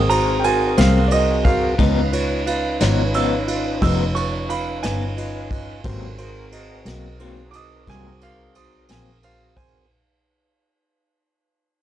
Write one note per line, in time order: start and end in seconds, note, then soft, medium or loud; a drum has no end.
0.00 0.74 G#1 medium
0.00 1.75 C4 medium
0.00 1.75 F#4 medium
0.00 1.75 G#4 medium
0.00 1.75 A#4 medium
0.10 0.36 F#4 medium
0.10 0.36 A#4 medium
0.10 0.36 C5 medium
0.10 0.43 A#5 loud
0.10 ride medium
0.40 0.69 F#4 medium
0.40 0.44 G5 medium
0.44 0.69 A#4 medium
0.44 0.70 C5 medium
0.44 0.77 G#5 loud
0.44 ride medium
0.78 1.76 C2 loud
0.78 0.99 F#3 soft
0.78 0.99 A#3 soft
0.78 0.98 C4 medium
0.78 1.03 F#4 medium
0.78 1.03 A#4 soft
0.78 1.03 C5 medium
0.78 1.11 F5 medium
0.78 snare loud
0.78 ride medium
1.08 1.37 F#4 medium
1.08 1.37 A#4 medium
1.08 1.37 C5 medium
1.08 1.12 D5 medium
1.08 ride medium
1.12 1.45 D#5 loud
1.44 1.70 F#4 medium
1.44 1.70 A#4 medium
1.44 1.71 C5 medium
1.44 2.11 F5 loud
1.44 kick medium
1.44 ride medium
1.78 2.77 C#2 medium
1.78 1.99 C#3 medium
1.78 1.99 F3 medium
1.78 2.00 B3 medium
1.78 5.81 C#4 medium
1.78 5.80 D#4 medium
1.78 2.00 D#4 medium
1.78 2.04 F4 medium
1.78 5.81 F4 medium
1.78 2.04 B4 medium
1.78 5.81 B4 medium
1.78 2.04 D#5 medium
1.78 kick loud
1.78 ride medium
2.12 2.38 F4 medium
2.12 2.38 B4 medium
2.12 2.38 C#5 medium
2.12 ride medium
2.46 2.72 F4 medium
2.46 2.72 B4 medium
2.46 2.72 F5 medium
2.46 ride medium
2.80 3.79 G#1 medium
2.80 3.02 F3 medium
2.80 3.02 B3 medium
2.80 3.01 D#4 medium
2.80 3.06 F4 medium
2.80 3.06 B4 medium
2.80 3.06 C#5 medium
2.80 snare loud
2.80 ride medium
3.14 3.35 C#3 medium
3.14 3.35 F3 medium
3.14 3.36 B3 medium
3.14 3.36 D#4 medium
3.14 3.40 F4 medium
3.14 3.40 B4 medium
3.14 3.40 C#5 medium
3.14 3.47 E6 medium
3.14 ride medium
3.47 3.73 F4 medium
3.47 3.73 B4 medium
3.47 3.73 D#5 medium
3.47 ride medium
3.81 4.81 F1 loud
3.81 4.02 C#3 medium
3.81 4.03 F3 medium
3.81 4.03 B3 medium
3.81 4.03 D#4 medium
3.81 4.07 F4 medium
3.81 4.07 B4 medium
3.81 4.07 D#5 medium
3.81 4.15 E6 loud
3.81 kick medium
3.81 snare soft
3.81 ride medium
4.14 4.40 F4 medium
4.14 4.40 B4 medium
4.14 4.41 C#5 medium
4.14 4.48 C#6 loud
4.14 ride medium
4.49 4.75 F4 medium
4.49 4.75 B4 medium
4.49 4.75 F5 medium
4.49 4.82 B5 loud
4.49 ride medium
4.83 5.82 G1 medium
4.83 5.05 F3 soft
4.83 5.04 B3 medium
4.83 5.04 D#4 medium
4.83 5.08 F4 medium
4.83 5.09 B4 medium
4.83 5.09 C#5 medium
4.83 6.82 G#5 medium
4.83 snare loud
4.83 ride medium
5.17 5.42 F4 medium
5.17 5.43 B4 medium
5.17 5.43 D#5 medium
5.17 ride medium
5.50 5.76 F4 medium
5.50 5.76 B4 medium
5.50 5.76 D#5 medium
5.50 kick medium
5.50 ride medium
5.84 6.83 G#1 loud
5.84 6.05 G#2 medium
5.84 6.05 F#3 medium
5.84 6.18 G3 medium
5.84 6.05 A#3 loud
5.84 6.05 C4 medium
5.84 6.19 C#4 medium
5.84 6.10 F#4 medium
5.84 6.18 A4 medium
5.84 6.10 A#4 medium
5.84 6.19 B4 medium
5.84 6.10 C5 medium
5.84 kick loud
5.84 ride medium
6.18 9.87 C4 medium
6.18 6.44 F#4 medium
6.18 9.87 F#4 medium
6.18 9.88 G#4 medium
6.18 6.44 A#4 medium
6.18 9.87 A#4 medium
6.18 6.44 C5 medium
6.18 ride medium
6.52 6.78 F#4 medium
6.52 6.78 A#4 medium
6.52 6.78 D#5 medium
6.52 ride medium
6.86 7.84 B1 medium
6.86 7.08 F#3 soft
6.86 7.07 A#3 medium
6.86 7.07 C4 medium
6.86 7.12 F#4 medium
6.86 7.12 A#4 medium
6.86 7.12 D#5 medium
6.86 snare loud
6.86 ride medium
7.19 7.40 G#2 medium
7.19 7.41 F#3 medium
7.19 7.41 A#3 medium
7.19 7.41 C4 medium
7.19 7.45 F#4 medium
7.19 7.46 A#4 medium
7.19 7.46 C5 medium
7.19 ride medium
7.51 7.79 F#4 medium
7.51 7.80 A#4 medium
7.51 7.55 D6 medium
7.51 ride medium
7.55 7.80 D#5 medium
7.55 7.88 D#6 loud
7.87 8.86 C2 medium
7.87 8.08 G#2 medium
7.87 8.08 F#3 medium
7.87 8.08 A#3 medium
7.87 8.09 C4 medium
7.87 8.13 F#4 medium
7.87 8.13 A#4 soft
7.87 8.13 C5 medium
7.87 8.22 G#5 loud
7.87 kick medium
7.87 snare soft
7.87 ride medium
8.21 8.47 F#4 medium
8.21 8.47 A#4 medium
8.21 8.47 C5 medium
8.21 8.55 F5 loud
8.21 ride medium
8.55 8.81 F#4 medium
8.55 8.81 A#4 soft
8.55 8.81 C5 medium
8.55 8.89 D#6 medium
8.55 ride medium
8.89 9.88 A#1 medium
8.89 9.11 F#3 soft
8.89 9.10 A#3 soft
8.89 9.09 C4 medium
8.89 9.15 F#4 medium
8.89 9.15 A#4 soft
8.89 9.15 C5 medium
8.89 9.23 G#5 medium
8.89 snare loud
8.89 ride medium
9.22 9.48 F#4 medium
9.22 9.48 A#4 medium
9.22 9.49 C5 medium
9.22 9.57 F5 loud
9.22 ride medium
9.56 9.82 F#4 medium
9.56 9.82 A#4 medium
9.56 9.88 C5 medium
9.56 9.82 C5 medium
9.56 9.90 G#5 loud
9.56 kick medium
9.56 ride medium